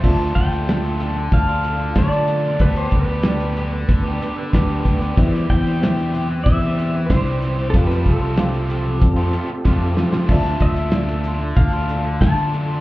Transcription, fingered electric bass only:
X:1
M:4/4
L:1/8
Q:1/4=94
K:Ddor
V:1 name="Fingered electric bass" clef=bass
D,, D,,3 D,,2 D,2 | D,, D,,3 D,, z D,, D,, | E,, E,,3 E,,2 C,,2 | F,, C,,3 F,, z F,, F, |
D,, D,,3 D,,2 D,2 |]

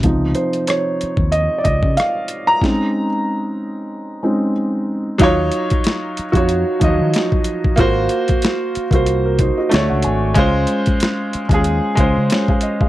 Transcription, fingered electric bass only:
X:1
M:4/4
L:1/16
Q:"Swing 16ths" 1/4=93
K:Ebdor
V:1 name="Fingered electric bass" clef=bass
D,,2 z4 z E,,2 z D,, D, z4 | z16 | E,,2 z4 z F,,2 z E,, E, z4 | A,,,2 z4 z C,,4 z =D,, ^C,, A,,,2 |
D,,2 z4 z E,,2 z D,, D, z4 |]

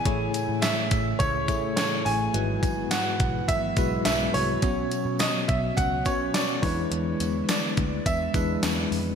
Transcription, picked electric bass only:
X:1
M:4/4
L:1/16
Q:1/4=105
K:E
V:1 name="Picked electric bass" clef=bass
A,,,2 z A,,2 z A,,,2 C,,2 A,,,2 z2 A,,,2 | G,,,2 G,,,2 z2 B,,,2 G,,,2 B,,,2 B,,,2 =C,,2 | B,,,2 z B,,2 z B,,,2 C,,2 B,,,2 z2 E,,2 | E,,2 E,,2 z2 =D,,2 E,,2 E,,2 E,,2 =F,,2 |]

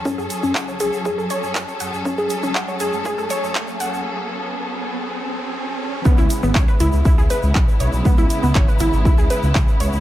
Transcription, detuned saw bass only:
X:1
M:4/4
L:1/16
Q:1/4=120
K:C#m
V:1 name="Detuned saw bass" clef=bass
F,, F,, z F,, F,,,2 C,, F,,, F,, F,, z F,, F,, z F,, F,, | F,, F,, z C,, F,, z F,, F,, F,, F,, z F,, E,, z E,, E,, | z16 | C,, C,, z G,,, C,, z C,, C,, C,, C,, z C,, B,,, z B,,, B,,, |
C,, C,, z C,, G,,, z G,,, G,,, C,, C,, z C,, C,, z C,, C,, |]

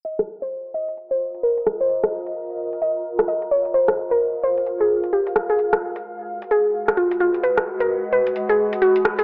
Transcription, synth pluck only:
X:1
M:4/4
L:1/16
Q:"Swing 16ths" 1/4=130
K:Fm
V:1 name="Synth pluck"
e z2 c z2 e z2 c z2 B z2 c | z8 e2 z2 e z d z | c z2 B z2 c z2 A z2 G z2 A | z8 A2 z2 F z F z |
_c z2 B z2 c z2 A z2 _G z2 A |]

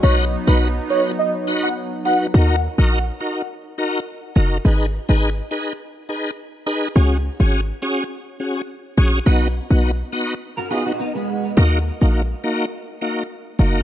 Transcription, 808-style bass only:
X:1
M:4/4
L:1/16
Q:1/4=104
K:Ebm
V:1 name="808-style bass" clef=bass
=B,,,3 B,,,3 z8 z2 | E,,3 B,,,3 z8 G,,,2 | A,,,3 A,,,3 z8 z2 | D,,3 A,,,3 z8 B,,,2 |
=B,,,3 B,,,3 z8 z2 | E,,3 B,,,3 z8 G,,,2 |]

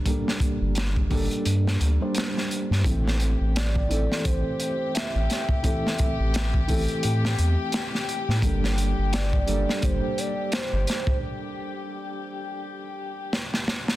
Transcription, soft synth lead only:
X:1
M:4/4
L:1/8
Q:"Swing 16ths" 1/4=86
K:Gdor
V:1 name="Soft synth lead"
z8 | z2 d2 c2 e2 | e3 z4 z | z2 d2 c d c2 |
z8 |]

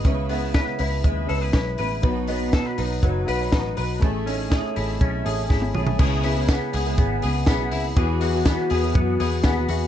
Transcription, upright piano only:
X:1
M:4/4
L:1/8
Q:1/4=122
K:C#m
V:1 name="Upright piano"
[CEB] [CEB] [CEB] [CEB] [CEB] [CEB] [CEB] [CEB] | [DFB] [DFB] [DFB] [DFB] [DFB] [DFB] [DFB] [DFB] | [A,CG] [A,CD] [A,CG] [A,CG] [A,CG] [A,CGe] [A,CGg] [A,CGb] | [B,CEG] [B,CEG] [B,CEG] [B,CEG] [B,CEG] [B,CEG] [B,CEG] [B,CEG] |
[B,EFG] [B,EFG] [B,EFG] [B,EFG] [B,EFG] [B,EFGb] [B,EFGg] [B,EFGe] |]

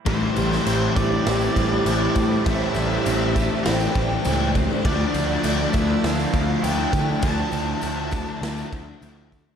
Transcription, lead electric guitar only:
X:1
M:4/4
L:1/8
Q:1/4=100
K:Aphr
V:1 name="Lead electric guitar"
c3 d4- d | e4 g3 z | d3 e f2 g2 | a6 z2 |]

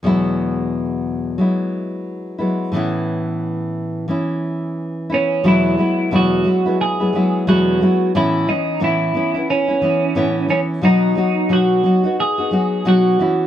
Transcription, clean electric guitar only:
X:1
M:4/4
L:1/8
Q:"Swing 16ths" 1/4=89
K:E
V:1 name="Clean electric guitar"
z8 | z6 z C | E2 F2 G2 F2 | E D E2 C3 C |
D2 F2 G2 F2 |]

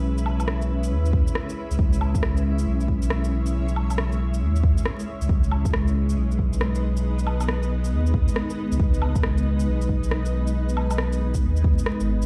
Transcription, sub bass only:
X:1
M:4/4
L:1/16
Q:"Swing 16ths" 1/4=137
K:C#m
V:1 name="Sub bass" clef=bass
B,,,8 D,,3 z4 C,, | C,,8 B,,,8- | B,,,8 D,,3 z4 C,, | C,,8 B,,,8- |
B,,,8 D,,3 z4 C,, | C,,8 B,,,8- | B,,,8 D,,3 z2 G,,,2 B,,, |]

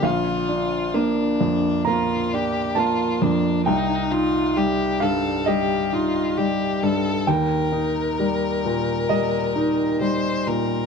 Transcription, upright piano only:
X:1
M:4/4
L:1/8
Q:1/4=66
K:Bb
V:1 name="Upright piano"
f4 b2 a2 | g3 f e2 z2 | g4 e4 |]
V:2 name="Upright piano" clef=bass
B,,, D B, F,, B, D B, F,, | C,, E G, G,, G, E G, G,, | E,, E G, B,, G, E G, B,, |]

